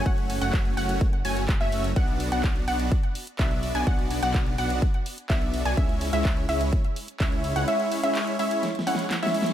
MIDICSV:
0, 0, Header, 1, 5, 480
1, 0, Start_track
1, 0, Tempo, 476190
1, 59, Time_signature, 4, 2, 24, 8
1, 9609, End_track
2, 0, Start_track
2, 0, Title_t, "Synth pluck"
2, 0, Program_c, 0, 84
2, 58, Note_on_c, 0, 78, 95
2, 390, Note_off_c, 0, 78, 0
2, 418, Note_on_c, 0, 78, 106
2, 750, Note_off_c, 0, 78, 0
2, 778, Note_on_c, 0, 78, 94
2, 1070, Note_off_c, 0, 78, 0
2, 1259, Note_on_c, 0, 80, 98
2, 1442, Note_off_c, 0, 80, 0
2, 1620, Note_on_c, 0, 76, 90
2, 1911, Note_off_c, 0, 76, 0
2, 1979, Note_on_c, 0, 78, 96
2, 2310, Note_off_c, 0, 78, 0
2, 2338, Note_on_c, 0, 78, 103
2, 2670, Note_off_c, 0, 78, 0
2, 2698, Note_on_c, 0, 78, 95
2, 2991, Note_off_c, 0, 78, 0
2, 3419, Note_on_c, 0, 76, 98
2, 3750, Note_off_c, 0, 76, 0
2, 3780, Note_on_c, 0, 80, 90
2, 3882, Note_off_c, 0, 80, 0
2, 3899, Note_on_c, 0, 78, 95
2, 4230, Note_off_c, 0, 78, 0
2, 4260, Note_on_c, 0, 78, 104
2, 4591, Note_off_c, 0, 78, 0
2, 4620, Note_on_c, 0, 78, 96
2, 4912, Note_off_c, 0, 78, 0
2, 5340, Note_on_c, 0, 76, 98
2, 5671, Note_off_c, 0, 76, 0
2, 5700, Note_on_c, 0, 80, 94
2, 5802, Note_off_c, 0, 80, 0
2, 5820, Note_on_c, 0, 76, 94
2, 6151, Note_off_c, 0, 76, 0
2, 6179, Note_on_c, 0, 76, 106
2, 6510, Note_off_c, 0, 76, 0
2, 6540, Note_on_c, 0, 76, 92
2, 6832, Note_off_c, 0, 76, 0
2, 7260, Note_on_c, 0, 76, 96
2, 7591, Note_off_c, 0, 76, 0
2, 7619, Note_on_c, 0, 78, 94
2, 7721, Note_off_c, 0, 78, 0
2, 7740, Note_on_c, 0, 76, 97
2, 8071, Note_off_c, 0, 76, 0
2, 8100, Note_on_c, 0, 76, 102
2, 8431, Note_off_c, 0, 76, 0
2, 8460, Note_on_c, 0, 76, 95
2, 8752, Note_off_c, 0, 76, 0
2, 8940, Note_on_c, 0, 78, 98
2, 9122, Note_off_c, 0, 78, 0
2, 9299, Note_on_c, 0, 76, 92
2, 9591, Note_off_c, 0, 76, 0
2, 9609, End_track
3, 0, Start_track
3, 0, Title_t, "Supersaw synth"
3, 0, Program_c, 1, 81
3, 60, Note_on_c, 1, 57, 88
3, 60, Note_on_c, 1, 61, 79
3, 60, Note_on_c, 1, 66, 80
3, 60, Note_on_c, 1, 73, 80
3, 60, Note_on_c, 1, 78, 93
3, 390, Note_off_c, 1, 78, 0
3, 391, Note_off_c, 1, 57, 0
3, 391, Note_off_c, 1, 61, 0
3, 391, Note_off_c, 1, 66, 0
3, 391, Note_off_c, 1, 73, 0
3, 418, Note_on_c, 1, 61, 86
3, 419, Note_on_c, 1, 57, 95
3, 419, Note_on_c, 1, 66, 83
3, 419, Note_on_c, 1, 73, 85
3, 419, Note_on_c, 1, 78, 101
3, 750, Note_off_c, 1, 57, 0
3, 750, Note_off_c, 1, 61, 0
3, 750, Note_off_c, 1, 66, 0
3, 750, Note_off_c, 1, 73, 0
3, 750, Note_off_c, 1, 78, 0
3, 778, Note_on_c, 1, 57, 86
3, 778, Note_on_c, 1, 61, 77
3, 778, Note_on_c, 1, 73, 77
3, 779, Note_on_c, 1, 66, 76
3, 779, Note_on_c, 1, 78, 95
3, 1070, Note_off_c, 1, 61, 0
3, 1071, Note_off_c, 1, 57, 0
3, 1071, Note_off_c, 1, 66, 0
3, 1071, Note_off_c, 1, 73, 0
3, 1071, Note_off_c, 1, 78, 0
3, 1258, Note_on_c, 1, 57, 88
3, 1258, Note_on_c, 1, 61, 81
3, 1258, Note_on_c, 1, 66, 82
3, 1258, Note_on_c, 1, 73, 81
3, 1258, Note_on_c, 1, 80, 98
3, 1441, Note_off_c, 1, 57, 0
3, 1441, Note_off_c, 1, 61, 0
3, 1441, Note_off_c, 1, 66, 0
3, 1441, Note_off_c, 1, 73, 0
3, 1441, Note_off_c, 1, 80, 0
3, 1618, Note_on_c, 1, 61, 77
3, 1619, Note_on_c, 1, 57, 83
3, 1619, Note_on_c, 1, 66, 76
3, 1619, Note_on_c, 1, 73, 77
3, 1619, Note_on_c, 1, 76, 93
3, 1911, Note_off_c, 1, 57, 0
3, 1911, Note_off_c, 1, 61, 0
3, 1911, Note_off_c, 1, 66, 0
3, 1911, Note_off_c, 1, 73, 0
3, 1911, Note_off_c, 1, 76, 0
3, 1978, Note_on_c, 1, 59, 84
3, 1978, Note_on_c, 1, 66, 81
3, 1978, Note_on_c, 1, 78, 95
3, 1979, Note_on_c, 1, 62, 83
3, 1979, Note_on_c, 1, 74, 80
3, 2310, Note_off_c, 1, 59, 0
3, 2310, Note_off_c, 1, 62, 0
3, 2310, Note_off_c, 1, 66, 0
3, 2310, Note_off_c, 1, 74, 0
3, 2310, Note_off_c, 1, 78, 0
3, 2339, Note_on_c, 1, 59, 92
3, 2339, Note_on_c, 1, 62, 86
3, 2339, Note_on_c, 1, 66, 88
3, 2339, Note_on_c, 1, 74, 82
3, 2339, Note_on_c, 1, 78, 107
3, 2670, Note_off_c, 1, 59, 0
3, 2670, Note_off_c, 1, 62, 0
3, 2670, Note_off_c, 1, 66, 0
3, 2670, Note_off_c, 1, 74, 0
3, 2670, Note_off_c, 1, 78, 0
3, 2700, Note_on_c, 1, 59, 88
3, 2700, Note_on_c, 1, 62, 77
3, 2700, Note_on_c, 1, 66, 77
3, 2700, Note_on_c, 1, 74, 80
3, 2700, Note_on_c, 1, 78, 92
3, 2991, Note_off_c, 1, 74, 0
3, 2992, Note_off_c, 1, 59, 0
3, 2992, Note_off_c, 1, 62, 0
3, 2992, Note_off_c, 1, 66, 0
3, 2992, Note_off_c, 1, 78, 0
3, 3419, Note_on_c, 1, 59, 86
3, 3419, Note_on_c, 1, 62, 81
3, 3419, Note_on_c, 1, 66, 80
3, 3419, Note_on_c, 1, 74, 80
3, 3419, Note_on_c, 1, 76, 95
3, 3750, Note_off_c, 1, 59, 0
3, 3750, Note_off_c, 1, 62, 0
3, 3750, Note_off_c, 1, 66, 0
3, 3750, Note_off_c, 1, 74, 0
3, 3750, Note_off_c, 1, 76, 0
3, 3780, Note_on_c, 1, 59, 89
3, 3780, Note_on_c, 1, 62, 80
3, 3780, Note_on_c, 1, 66, 79
3, 3780, Note_on_c, 1, 74, 77
3, 3780, Note_on_c, 1, 80, 97
3, 3881, Note_off_c, 1, 59, 0
3, 3881, Note_off_c, 1, 62, 0
3, 3882, Note_off_c, 1, 66, 0
3, 3882, Note_off_c, 1, 74, 0
3, 3882, Note_off_c, 1, 80, 0
3, 3901, Note_on_c, 1, 62, 83
3, 3901, Note_on_c, 1, 74, 79
3, 3901, Note_on_c, 1, 78, 97
3, 3902, Note_on_c, 1, 59, 89
3, 3902, Note_on_c, 1, 66, 79
3, 4231, Note_off_c, 1, 62, 0
3, 4231, Note_off_c, 1, 66, 0
3, 4231, Note_off_c, 1, 74, 0
3, 4231, Note_off_c, 1, 78, 0
3, 4232, Note_off_c, 1, 59, 0
3, 4259, Note_on_c, 1, 59, 92
3, 4259, Note_on_c, 1, 62, 85
3, 4259, Note_on_c, 1, 66, 87
3, 4259, Note_on_c, 1, 74, 86
3, 4259, Note_on_c, 1, 78, 106
3, 4590, Note_off_c, 1, 59, 0
3, 4590, Note_off_c, 1, 62, 0
3, 4590, Note_off_c, 1, 66, 0
3, 4590, Note_off_c, 1, 74, 0
3, 4590, Note_off_c, 1, 78, 0
3, 4619, Note_on_c, 1, 59, 82
3, 4619, Note_on_c, 1, 62, 79
3, 4619, Note_on_c, 1, 66, 78
3, 4619, Note_on_c, 1, 74, 78
3, 4619, Note_on_c, 1, 78, 92
3, 4911, Note_off_c, 1, 59, 0
3, 4911, Note_off_c, 1, 62, 0
3, 4911, Note_off_c, 1, 66, 0
3, 4911, Note_off_c, 1, 74, 0
3, 4911, Note_off_c, 1, 78, 0
3, 5339, Note_on_c, 1, 66, 83
3, 5339, Note_on_c, 1, 74, 81
3, 5339, Note_on_c, 1, 76, 98
3, 5340, Note_on_c, 1, 59, 88
3, 5340, Note_on_c, 1, 62, 81
3, 5670, Note_off_c, 1, 66, 0
3, 5670, Note_off_c, 1, 74, 0
3, 5670, Note_off_c, 1, 76, 0
3, 5671, Note_off_c, 1, 59, 0
3, 5671, Note_off_c, 1, 62, 0
3, 5699, Note_on_c, 1, 59, 85
3, 5699, Note_on_c, 1, 66, 78
3, 5700, Note_on_c, 1, 62, 81
3, 5700, Note_on_c, 1, 74, 80
3, 5700, Note_on_c, 1, 80, 94
3, 5801, Note_off_c, 1, 59, 0
3, 5801, Note_off_c, 1, 66, 0
3, 5802, Note_off_c, 1, 62, 0
3, 5802, Note_off_c, 1, 74, 0
3, 5802, Note_off_c, 1, 80, 0
3, 5819, Note_on_c, 1, 56, 86
3, 5819, Note_on_c, 1, 61, 81
3, 5819, Note_on_c, 1, 64, 79
3, 5819, Note_on_c, 1, 73, 79
3, 5819, Note_on_c, 1, 76, 97
3, 6150, Note_off_c, 1, 56, 0
3, 6150, Note_off_c, 1, 61, 0
3, 6150, Note_off_c, 1, 64, 0
3, 6150, Note_off_c, 1, 73, 0
3, 6150, Note_off_c, 1, 76, 0
3, 6180, Note_on_c, 1, 56, 97
3, 6180, Note_on_c, 1, 61, 83
3, 6180, Note_on_c, 1, 64, 88
3, 6180, Note_on_c, 1, 73, 86
3, 6180, Note_on_c, 1, 76, 103
3, 6511, Note_off_c, 1, 56, 0
3, 6511, Note_off_c, 1, 61, 0
3, 6511, Note_off_c, 1, 64, 0
3, 6511, Note_off_c, 1, 73, 0
3, 6511, Note_off_c, 1, 76, 0
3, 6540, Note_on_c, 1, 73, 77
3, 6541, Note_on_c, 1, 56, 87
3, 6541, Note_on_c, 1, 61, 80
3, 6541, Note_on_c, 1, 64, 78
3, 6541, Note_on_c, 1, 76, 93
3, 6832, Note_off_c, 1, 56, 0
3, 6832, Note_off_c, 1, 61, 0
3, 6832, Note_off_c, 1, 64, 0
3, 6832, Note_off_c, 1, 73, 0
3, 6832, Note_off_c, 1, 76, 0
3, 7260, Note_on_c, 1, 56, 89
3, 7260, Note_on_c, 1, 73, 80
3, 7260, Note_on_c, 1, 76, 95
3, 7261, Note_on_c, 1, 61, 79
3, 7261, Note_on_c, 1, 64, 82
3, 7591, Note_off_c, 1, 56, 0
3, 7591, Note_off_c, 1, 61, 0
3, 7591, Note_off_c, 1, 64, 0
3, 7591, Note_off_c, 1, 73, 0
3, 7591, Note_off_c, 1, 76, 0
3, 7620, Note_on_c, 1, 56, 87
3, 7620, Note_on_c, 1, 61, 79
3, 7620, Note_on_c, 1, 64, 79
3, 7620, Note_on_c, 1, 73, 79
3, 7620, Note_on_c, 1, 78, 96
3, 7721, Note_off_c, 1, 61, 0
3, 7721, Note_off_c, 1, 73, 0
3, 7722, Note_off_c, 1, 56, 0
3, 7722, Note_off_c, 1, 64, 0
3, 7722, Note_off_c, 1, 78, 0
3, 7739, Note_on_c, 1, 56, 90
3, 7739, Note_on_c, 1, 61, 81
3, 7739, Note_on_c, 1, 64, 84
3, 7739, Note_on_c, 1, 73, 84
3, 7739, Note_on_c, 1, 76, 101
3, 8070, Note_off_c, 1, 56, 0
3, 8070, Note_off_c, 1, 61, 0
3, 8070, Note_off_c, 1, 64, 0
3, 8070, Note_off_c, 1, 73, 0
3, 8070, Note_off_c, 1, 76, 0
3, 8099, Note_on_c, 1, 56, 90
3, 8099, Note_on_c, 1, 61, 89
3, 8099, Note_on_c, 1, 64, 83
3, 8099, Note_on_c, 1, 73, 89
3, 8099, Note_on_c, 1, 76, 103
3, 8430, Note_off_c, 1, 56, 0
3, 8430, Note_off_c, 1, 61, 0
3, 8430, Note_off_c, 1, 64, 0
3, 8430, Note_off_c, 1, 73, 0
3, 8430, Note_off_c, 1, 76, 0
3, 8460, Note_on_c, 1, 56, 83
3, 8460, Note_on_c, 1, 61, 78
3, 8460, Note_on_c, 1, 64, 78
3, 8460, Note_on_c, 1, 73, 76
3, 8460, Note_on_c, 1, 76, 95
3, 8751, Note_off_c, 1, 61, 0
3, 8751, Note_off_c, 1, 73, 0
3, 8751, Note_off_c, 1, 76, 0
3, 8752, Note_off_c, 1, 56, 0
3, 8752, Note_off_c, 1, 64, 0
3, 8940, Note_on_c, 1, 56, 92
3, 8940, Note_on_c, 1, 64, 82
3, 8940, Note_on_c, 1, 73, 84
3, 8940, Note_on_c, 1, 78, 99
3, 8941, Note_on_c, 1, 61, 85
3, 9122, Note_off_c, 1, 56, 0
3, 9122, Note_off_c, 1, 61, 0
3, 9122, Note_off_c, 1, 64, 0
3, 9122, Note_off_c, 1, 73, 0
3, 9122, Note_off_c, 1, 78, 0
3, 9299, Note_on_c, 1, 61, 74
3, 9300, Note_on_c, 1, 56, 84
3, 9300, Note_on_c, 1, 64, 78
3, 9300, Note_on_c, 1, 73, 75
3, 9300, Note_on_c, 1, 76, 91
3, 9591, Note_off_c, 1, 56, 0
3, 9591, Note_off_c, 1, 61, 0
3, 9591, Note_off_c, 1, 64, 0
3, 9591, Note_off_c, 1, 73, 0
3, 9591, Note_off_c, 1, 76, 0
3, 9609, End_track
4, 0, Start_track
4, 0, Title_t, "Detuned saw bass"
4, 0, Program_c, 2, 39
4, 59, Note_on_c, 2, 30, 100
4, 395, Note_off_c, 2, 30, 0
4, 419, Note_on_c, 2, 30, 98
4, 755, Note_off_c, 2, 30, 0
4, 779, Note_on_c, 2, 30, 98
4, 1235, Note_off_c, 2, 30, 0
4, 1258, Note_on_c, 2, 30, 96
4, 1595, Note_off_c, 2, 30, 0
4, 1617, Note_on_c, 2, 30, 97
4, 1954, Note_off_c, 2, 30, 0
4, 1979, Note_on_c, 2, 35, 97
4, 2315, Note_off_c, 2, 35, 0
4, 2338, Note_on_c, 2, 35, 98
4, 2674, Note_off_c, 2, 35, 0
4, 2698, Note_on_c, 2, 35, 97
4, 2966, Note_off_c, 2, 35, 0
4, 3420, Note_on_c, 2, 35, 99
4, 3755, Note_off_c, 2, 35, 0
4, 3779, Note_on_c, 2, 35, 95
4, 3875, Note_off_c, 2, 35, 0
4, 3899, Note_on_c, 2, 35, 94
4, 4235, Note_off_c, 2, 35, 0
4, 4260, Note_on_c, 2, 35, 100
4, 4596, Note_off_c, 2, 35, 0
4, 4621, Note_on_c, 2, 35, 97
4, 4888, Note_off_c, 2, 35, 0
4, 5340, Note_on_c, 2, 35, 96
4, 5675, Note_off_c, 2, 35, 0
4, 5699, Note_on_c, 2, 35, 94
4, 5795, Note_off_c, 2, 35, 0
4, 5820, Note_on_c, 2, 37, 95
4, 6155, Note_off_c, 2, 37, 0
4, 6179, Note_on_c, 2, 37, 99
4, 6515, Note_off_c, 2, 37, 0
4, 6538, Note_on_c, 2, 37, 95
4, 6807, Note_off_c, 2, 37, 0
4, 7260, Note_on_c, 2, 37, 99
4, 7595, Note_off_c, 2, 37, 0
4, 7619, Note_on_c, 2, 37, 96
4, 7715, Note_off_c, 2, 37, 0
4, 9609, End_track
5, 0, Start_track
5, 0, Title_t, "Drums"
5, 59, Note_on_c, 9, 36, 123
5, 60, Note_on_c, 9, 42, 52
5, 160, Note_off_c, 9, 36, 0
5, 161, Note_off_c, 9, 42, 0
5, 181, Note_on_c, 9, 42, 26
5, 281, Note_off_c, 9, 42, 0
5, 300, Note_on_c, 9, 46, 109
5, 400, Note_off_c, 9, 46, 0
5, 419, Note_on_c, 9, 42, 52
5, 520, Note_off_c, 9, 42, 0
5, 538, Note_on_c, 9, 39, 117
5, 539, Note_on_c, 9, 36, 125
5, 539, Note_on_c, 9, 42, 51
5, 639, Note_off_c, 9, 39, 0
5, 640, Note_off_c, 9, 36, 0
5, 640, Note_off_c, 9, 42, 0
5, 659, Note_on_c, 9, 42, 26
5, 760, Note_off_c, 9, 42, 0
5, 779, Note_on_c, 9, 46, 101
5, 880, Note_off_c, 9, 46, 0
5, 899, Note_on_c, 9, 42, 54
5, 1000, Note_off_c, 9, 42, 0
5, 1019, Note_on_c, 9, 36, 124
5, 1019, Note_on_c, 9, 42, 50
5, 1119, Note_off_c, 9, 36, 0
5, 1120, Note_off_c, 9, 42, 0
5, 1139, Note_on_c, 9, 42, 26
5, 1240, Note_off_c, 9, 42, 0
5, 1258, Note_on_c, 9, 46, 109
5, 1359, Note_off_c, 9, 46, 0
5, 1378, Note_on_c, 9, 42, 50
5, 1479, Note_off_c, 9, 42, 0
5, 1497, Note_on_c, 9, 39, 120
5, 1497, Note_on_c, 9, 42, 50
5, 1498, Note_on_c, 9, 36, 121
5, 1598, Note_off_c, 9, 39, 0
5, 1598, Note_off_c, 9, 42, 0
5, 1599, Note_off_c, 9, 36, 0
5, 1618, Note_on_c, 9, 42, 27
5, 1719, Note_off_c, 9, 42, 0
5, 1737, Note_on_c, 9, 46, 94
5, 1838, Note_off_c, 9, 46, 0
5, 1858, Note_on_c, 9, 42, 52
5, 1959, Note_off_c, 9, 42, 0
5, 1978, Note_on_c, 9, 42, 51
5, 1979, Note_on_c, 9, 36, 123
5, 2079, Note_off_c, 9, 36, 0
5, 2079, Note_off_c, 9, 42, 0
5, 2099, Note_on_c, 9, 42, 26
5, 2199, Note_off_c, 9, 42, 0
5, 2218, Note_on_c, 9, 46, 109
5, 2319, Note_off_c, 9, 46, 0
5, 2338, Note_on_c, 9, 42, 52
5, 2439, Note_off_c, 9, 42, 0
5, 2457, Note_on_c, 9, 39, 112
5, 2458, Note_on_c, 9, 42, 51
5, 2459, Note_on_c, 9, 36, 122
5, 2558, Note_off_c, 9, 39, 0
5, 2559, Note_off_c, 9, 42, 0
5, 2560, Note_off_c, 9, 36, 0
5, 2578, Note_on_c, 9, 42, 24
5, 2679, Note_off_c, 9, 42, 0
5, 2698, Note_on_c, 9, 46, 94
5, 2799, Note_off_c, 9, 46, 0
5, 2818, Note_on_c, 9, 42, 54
5, 2919, Note_off_c, 9, 42, 0
5, 2938, Note_on_c, 9, 42, 49
5, 2939, Note_on_c, 9, 36, 119
5, 3039, Note_off_c, 9, 42, 0
5, 3040, Note_off_c, 9, 36, 0
5, 3058, Note_on_c, 9, 42, 26
5, 3159, Note_off_c, 9, 42, 0
5, 3178, Note_on_c, 9, 46, 110
5, 3278, Note_off_c, 9, 46, 0
5, 3298, Note_on_c, 9, 42, 51
5, 3399, Note_off_c, 9, 42, 0
5, 3418, Note_on_c, 9, 39, 113
5, 3418, Note_on_c, 9, 42, 52
5, 3419, Note_on_c, 9, 36, 120
5, 3518, Note_off_c, 9, 39, 0
5, 3519, Note_off_c, 9, 42, 0
5, 3520, Note_off_c, 9, 36, 0
5, 3539, Note_on_c, 9, 42, 25
5, 3640, Note_off_c, 9, 42, 0
5, 3658, Note_on_c, 9, 46, 93
5, 3759, Note_off_c, 9, 46, 0
5, 3779, Note_on_c, 9, 42, 50
5, 3880, Note_off_c, 9, 42, 0
5, 3899, Note_on_c, 9, 36, 117
5, 3899, Note_on_c, 9, 42, 55
5, 4000, Note_off_c, 9, 36, 0
5, 4000, Note_off_c, 9, 42, 0
5, 4019, Note_on_c, 9, 42, 27
5, 4120, Note_off_c, 9, 42, 0
5, 4138, Note_on_c, 9, 46, 103
5, 4239, Note_off_c, 9, 46, 0
5, 4259, Note_on_c, 9, 42, 56
5, 4360, Note_off_c, 9, 42, 0
5, 4378, Note_on_c, 9, 39, 113
5, 4379, Note_on_c, 9, 36, 116
5, 4379, Note_on_c, 9, 42, 51
5, 4479, Note_off_c, 9, 39, 0
5, 4479, Note_off_c, 9, 42, 0
5, 4480, Note_off_c, 9, 36, 0
5, 4500, Note_on_c, 9, 42, 26
5, 4601, Note_off_c, 9, 42, 0
5, 4619, Note_on_c, 9, 46, 94
5, 4720, Note_off_c, 9, 46, 0
5, 4740, Note_on_c, 9, 42, 55
5, 4841, Note_off_c, 9, 42, 0
5, 4860, Note_on_c, 9, 36, 116
5, 4860, Note_on_c, 9, 42, 53
5, 4960, Note_off_c, 9, 36, 0
5, 4961, Note_off_c, 9, 42, 0
5, 4982, Note_on_c, 9, 42, 27
5, 5082, Note_off_c, 9, 42, 0
5, 5100, Note_on_c, 9, 46, 110
5, 5201, Note_off_c, 9, 46, 0
5, 5221, Note_on_c, 9, 42, 54
5, 5322, Note_off_c, 9, 42, 0
5, 5340, Note_on_c, 9, 36, 115
5, 5341, Note_on_c, 9, 39, 114
5, 5341, Note_on_c, 9, 42, 54
5, 5440, Note_off_c, 9, 36, 0
5, 5441, Note_off_c, 9, 39, 0
5, 5442, Note_off_c, 9, 42, 0
5, 5461, Note_on_c, 9, 42, 26
5, 5562, Note_off_c, 9, 42, 0
5, 5581, Note_on_c, 9, 46, 89
5, 5681, Note_off_c, 9, 46, 0
5, 5700, Note_on_c, 9, 42, 52
5, 5801, Note_off_c, 9, 42, 0
5, 5820, Note_on_c, 9, 36, 117
5, 5820, Note_on_c, 9, 42, 56
5, 5920, Note_off_c, 9, 42, 0
5, 5921, Note_off_c, 9, 36, 0
5, 5940, Note_on_c, 9, 42, 27
5, 6040, Note_off_c, 9, 42, 0
5, 6059, Note_on_c, 9, 46, 101
5, 6160, Note_off_c, 9, 46, 0
5, 6180, Note_on_c, 9, 42, 56
5, 6281, Note_off_c, 9, 42, 0
5, 6300, Note_on_c, 9, 36, 119
5, 6300, Note_on_c, 9, 39, 119
5, 6301, Note_on_c, 9, 42, 55
5, 6401, Note_off_c, 9, 36, 0
5, 6401, Note_off_c, 9, 39, 0
5, 6401, Note_off_c, 9, 42, 0
5, 6421, Note_on_c, 9, 42, 28
5, 6521, Note_off_c, 9, 42, 0
5, 6540, Note_on_c, 9, 46, 92
5, 6641, Note_off_c, 9, 46, 0
5, 6660, Note_on_c, 9, 42, 57
5, 6761, Note_off_c, 9, 42, 0
5, 6780, Note_on_c, 9, 36, 114
5, 6780, Note_on_c, 9, 42, 54
5, 6881, Note_off_c, 9, 36, 0
5, 6881, Note_off_c, 9, 42, 0
5, 6900, Note_on_c, 9, 42, 28
5, 7000, Note_off_c, 9, 42, 0
5, 7019, Note_on_c, 9, 46, 102
5, 7120, Note_off_c, 9, 46, 0
5, 7139, Note_on_c, 9, 42, 56
5, 7240, Note_off_c, 9, 42, 0
5, 7259, Note_on_c, 9, 36, 111
5, 7260, Note_on_c, 9, 39, 121
5, 7260, Note_on_c, 9, 42, 55
5, 7360, Note_off_c, 9, 36, 0
5, 7361, Note_off_c, 9, 39, 0
5, 7361, Note_off_c, 9, 42, 0
5, 7380, Note_on_c, 9, 42, 28
5, 7481, Note_off_c, 9, 42, 0
5, 7500, Note_on_c, 9, 46, 87
5, 7601, Note_off_c, 9, 46, 0
5, 7620, Note_on_c, 9, 42, 54
5, 7721, Note_off_c, 9, 42, 0
5, 7740, Note_on_c, 9, 42, 60
5, 7840, Note_off_c, 9, 42, 0
5, 7859, Note_on_c, 9, 42, 29
5, 7960, Note_off_c, 9, 42, 0
5, 7979, Note_on_c, 9, 46, 103
5, 8080, Note_off_c, 9, 46, 0
5, 8100, Note_on_c, 9, 42, 57
5, 8200, Note_off_c, 9, 42, 0
5, 8219, Note_on_c, 9, 39, 122
5, 8219, Note_on_c, 9, 42, 56
5, 8320, Note_off_c, 9, 39, 0
5, 8320, Note_off_c, 9, 42, 0
5, 8340, Note_on_c, 9, 42, 28
5, 8440, Note_off_c, 9, 42, 0
5, 8459, Note_on_c, 9, 46, 95
5, 8560, Note_off_c, 9, 46, 0
5, 8580, Note_on_c, 9, 42, 60
5, 8681, Note_off_c, 9, 42, 0
5, 8700, Note_on_c, 9, 38, 66
5, 8700, Note_on_c, 9, 42, 54
5, 8801, Note_off_c, 9, 38, 0
5, 8801, Note_off_c, 9, 42, 0
5, 8820, Note_on_c, 9, 42, 29
5, 8860, Note_on_c, 9, 38, 76
5, 8921, Note_off_c, 9, 42, 0
5, 8941, Note_on_c, 9, 46, 107
5, 8961, Note_off_c, 9, 38, 0
5, 9021, Note_on_c, 9, 38, 85
5, 9041, Note_off_c, 9, 46, 0
5, 9061, Note_on_c, 9, 42, 55
5, 9121, Note_off_c, 9, 38, 0
5, 9161, Note_off_c, 9, 42, 0
5, 9181, Note_on_c, 9, 38, 90
5, 9181, Note_on_c, 9, 39, 127
5, 9181, Note_on_c, 9, 42, 54
5, 9281, Note_off_c, 9, 39, 0
5, 9282, Note_off_c, 9, 38, 0
5, 9282, Note_off_c, 9, 42, 0
5, 9300, Note_on_c, 9, 42, 29
5, 9340, Note_on_c, 9, 38, 96
5, 9401, Note_off_c, 9, 42, 0
5, 9420, Note_on_c, 9, 46, 90
5, 9441, Note_off_c, 9, 38, 0
5, 9500, Note_on_c, 9, 38, 103
5, 9521, Note_off_c, 9, 46, 0
5, 9540, Note_on_c, 9, 42, 58
5, 9601, Note_off_c, 9, 38, 0
5, 9609, Note_off_c, 9, 42, 0
5, 9609, End_track
0, 0, End_of_file